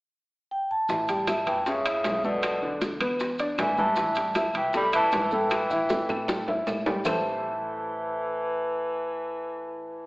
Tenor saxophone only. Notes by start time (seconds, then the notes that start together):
1.46 E3
1.66 C#3
2.24 B2
3.58 E3
3.78 E3
4.56 E3
4.76 G3
4.95 E3
5.33 E3
7.06 E3